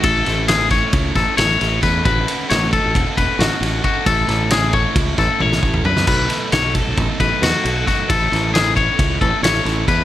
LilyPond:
<<
  \new Staff \with { instrumentName = "Clean electric guitar" } { \time 9/8 \key a \lydian \tempo 4. = 89 a'4 gis'8 cis''4 a'8 cis''4 b'8 | b'4 cis''8 a'4 b'8 fis'4 fis'8 | a'4 gis'8 cis''4 a'8 cis''4 b'8 | b'4 cis''8 a'4 b'8 fis'4 fis'8 |
a'4 gis'8 cis''4 a'8 cis''4 b'8 | }
  \new Staff \with { instrumentName = "Overdriven electric guitar" } { \time 9/8 \key a \lydian <a cis' e' a'>8 <cis' e' a'>8 <a cis' e' a'>8 <cis' e' a'>8 <a cis' e' a'>4 <a cis' e' a'>8 <cis' e' a'>8 <a cis' e' a'>8 | <a cis' fis' a'>8 <cis' fis' a'>8 <a cis' fis' a'>8 <cis' fis' a'>8 <a cis' fis' a'>4 <a cis' fis' a'>8 <cis' fis' a'>8 <a cis' fis' a'>8 | <a cis' e' a'>8 <cis' e' a'>8 <a cis' e' a'>8 <cis' e' a'>8 <a cis' e' a'>4 <a cis' e' a'>8 <cis' e' a'>8 <a cis' e' a'>8 | <b, fis a dis' a'>8 <a dis' a'>8 <fis a dis' a'>8 <a dis' a'>8 <b, fis a dis' a'>4 <fis a dis' a'>8 <a dis' a'>8 <b, fis a dis' a'>8 |
<a cis' e' a'>8 <cis' e' a'>8 <a cis' e' a'>8 <cis' e' a'>8 <a cis' e' a'>4 <a cis' e' a'>8 <cis' e' a'>8 <a cis' e' a'>8 | }
  \new Staff \with { instrumentName = "Fingered electric bass" } { \clef bass \time 9/8 \key a \lydian a,,8 a,,4. cis,8 a,,16 r16 a,,8 a,,8 e,8 | a,,8 r8 a,,8. a,,16 e,,16 r16 e,,16 r16 a,,16 r16 a,,8 r8 | a,,8 a,,4. cis,8 a,,16 r16 a,,8 a,,8 fis,8 | b,,8 r8 b,,8. b,,16 a,,16 r16 a,,16 r16 e,16 r16 b,,8 r8 |
a,,8 a,,4. cis,8 a,,16 r16 a,,8 a,,8 e,8 | }
  \new DrumStaff \with { instrumentName = "Drums" } \drummode { \time 9/8 <bd cymr>8 <cymr sn>8 <cymr sn>8 <bd cymr sn>8 <bd cymr>8 <bd cymr sn>8 <cymr sn>8 <cymr sn>8 <bd cymr sn>8 | <bd cymr>8 cymr8 <cymr sn>8 <bd cymr>8 <bd cymr>8 <bd cymr>8 <cymr sn>8 <cymr sn>8 <bd cymr>8 | <bd cymr>8 <cymr sn>8 <cymr sn>8 <bd cymr>8 <bd cymr>8 <bd cymr sn>8 tommh16 sn16 bd16 toml16 tomfh16 sn16 | <cymc bd cymr>8 <cymr sn>8 <cymr sn>8 <bd cymr>8 <bd cymr>8 <bd cymr>8 <cymr sn>8 cymr8 <bd cymr sn>8 |
<bd cymr>8 <cymr sn>8 <cymr sn>8 <bd cymr>8 <bd cymr>8 <bd cymr>8 <cymr sn>8 <cymr sn>8 <bd cymr>8 | }
>>